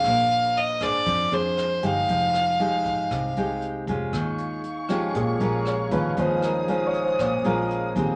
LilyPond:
<<
  \new Staff \with { instrumentName = "String section" } { \time 4/4 \key ees \mixolydian \tempo 4 = 118 << { r1 | r1 | des'''1 | ees'''1 | } \\ { r1 | r1 | <aes' f''>1~ | <aes' f''>1 | } >> }
  \new Staff \with { instrumentName = "Fiddle" } { \time 4/4 \key ees \mixolydian f''4 ees''8 d''4 c''4 f''8~ | f''2. r4 | r1 | r1 | }
  \new Staff \with { instrumentName = "Grand piano" } { \time 4/4 \key ees \mixolydian r2. r8 g''8~ | g''8 r2. r8 | r4. g'8 aes'8 bes'8 des''8 b'8 | c''8 bes'8 \tuplet 3/2 { c''8 des''8 c''8 } des''8 bes'8 r4 | }
  \new Staff \with { instrumentName = "Grand piano" } { \clef bass \time 4/4 \key ees \mixolydian r1 | r1 | r4. <f aes des'>4. r8 <f aes des'>8 | <f aes des'>8 r2 <f aes des'>8 r4 | }
  \new Staff \with { instrumentName = "Nylon-string guitar" } { \time 4/4 \key ees \mixolydian << { <d' aes' c''>4. <d' aes' c''>4 <d' aes' c''>4 <aes ees' g'>8~ | <aes ees' g'>4 <aes ees' g'>4. <aes ees' g'>4 <aes des' f'>8~ | <aes des' f'>4 r8 <aes des' f'>4 <aes des' f'>4 <aes des' f'>8 | <aes des' f'>8 r8 <aes des' f'>4. <aes des' f'>4 <aes c' g'>8 | } \\ { bes2 f2 | f2 c2 | ees2 bes,2 | ees2 bes,2 | } >> }
  \new Staff \with { instrumentName = "Fingered electric bass" } { \clef bass \time 4/4 \key ees \mixolydian bes,,2 f,8 f,4 g,,8 | f,,2 c,8 c,4 f,,8 | ees,2 bes,,8 bes,,4 ees,8 | ees,2 bes,,8 bes,,4 ees,8 | }
  \new DrumStaff \with { instrumentName = "Drums" } \drummode { \time 4/4 <hh bd ss>8 hh8 hh8 <hh bd ss>8 <hh bd>8 hh8 <hh ss>8 hh8 | <hh bd>8 <hh ss>8 hh8 <hh bd>8 <hh bd ss>8 hh8 hh8 <hh bd>8 | <hh bd ss>8 hh8 hh8 <hh ss>8 <hh bd>8 hh8 <hh ss>8 <hh bd>8 | <hh bd>8 <hh ss>8 hh8 hh8 <hh bd ss>8 hh8 hh8 <hh bd>8 | }
>>